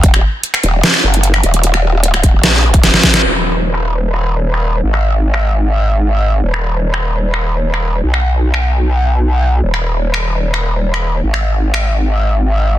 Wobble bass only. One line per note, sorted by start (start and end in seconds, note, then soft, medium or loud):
0.03 0.22 D#1 loud
0.64 0.82 D#1 loud
1.04 1.42 F#1 medium
1.44 1.99 D#1 loud
1.99 2.22 D1 loud
2.23 2.42 D#1 loud
2.44 2.82 A#1 loud
2.84 2.92 D#1 loud
3.24 4.82 D#1 medium
4.84 6.42 G#1 medium
6.43 8.02 D#1 medium
8.04 9.62 B1 medium
9.64 11.22 D#1 medium
11.24 12.79 G#1 medium